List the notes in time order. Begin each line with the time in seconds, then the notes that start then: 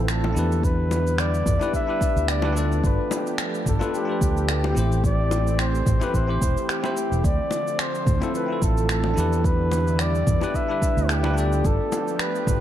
Already playing: A1 D3 F3 A3 C4 E4 F4 A4
0.03 B4
0.08 A4, finger snap, cabasa
0.24 high bongo
0.33 E2 D4 E4
0.37 G4 B4, cabasa
0.52 cabasa
0.63 D3 G3 B3 E4 B4, kick, cabasa
0.91 high bongo, cabasa
1.07 cabasa
1.18 D5, finger snap, cabasa
1.34 cabasa
1.46 E2, kick, mid tom, cabasa
1.59 D4 E4 G4 B4, high bongo, cabasa
1.74 E5, kick, cabasa
1.87 D4 E4 G4 B4
2.01 kick, cabasa
2.16 D2, cabasa
2.28 D5, finger snap, cabasa
2.42 D4 E4 G4 B4, high bongo
2.53 D4 F4
2.57 A4 D5, cabasa
2.72 cabasa
2.83 G1 F3 A3 G4 B4, kick, cabasa
3.11 high bongo, cabasa
3.27 cabasa
3.38 finger snap, cabasa
3.54 cabasa
3.66 G1 A4, kick, mid tom, cabasa
3.79 D4 F4 A4 B4, high bongo, cabasa
3.94 G4, cabasa
4.05 D4 F4
4.09 A4 B4
4.21 D2, kick, cabasa
4.37 cabasa
4.49 G4, finger snap, cabasa
4.64 high bongo
4.73 A1 E3 C4 E4, cabasa
4.77 G4 C5
4.92 cabasa
5.04 D5, kick, cabasa
5.31 high bongo, cabasa
5.47 cabasa
5.59 C5, finger snap, cabasa
5.75 cabasa
5.86 A1, kick, mid tom, cabasa
6.00 C4 E4 G4 B4, high bongo, cabasa
6.14 A1 C5, kick, cabasa
6.27 C4 E4 G4 C5
6.41 E1, kick, cabasa
6.57 cabasa
6.69 G4, finger snap, cabasa
6.83 C4 E4 G4 C5, high bongo, cabasa
6.97 cabasa
7.11 E1, cabasa
7.24 D2 D3 F3 A3 C4 D5, kick, cabasa
7.51 high bongo, cabasa
7.67 cabasa
7.79 C5, finger snap, cabasa
7.95 cabasa
8.06 D2, kick, mid tom, cabasa
8.20 C4 E4 F4 A4, high bongo, cabasa
8.35 B4, cabasa
8.46 C4 E4
8.50 F4 A4
8.62 A1 A4, kick, cabasa
8.78 cabasa
8.89 A4, finger snap, cabasa
9.04 high bongo
9.14 E2 D4 E4, cabasa
9.18 G4 B4
9.33 cabasa
9.44 G3 B3 E4 B4, kick, cabasa
9.72 high bongo, cabasa
9.88 cabasa
9.99 D5, finger snap, cabasa
10.15 cabasa
10.27 E2, kick, mid tom, cabasa
10.41 D4 E4 G4 B4, high bongo, cabasa
10.54 E5, kick, cabasa
10.68 D4 E4 G4 B4
10.82 kick, cabasa
10.97 D2, cabasa
11.09 G4, finger snap, cabasa
11.23 D4 E4 G4 B4, high bongo
11.34 D4 F4
11.38 A4 D5, cabasa
11.52 cabasa
11.64 G1 F3 A3 G4 A4, kick, cabasa
11.92 high bongo, cabasa
12.08 cabasa
12.19 B4, finger snap, cabasa
12.35 cabasa
12.47 G1, kick, mid tom, cabasa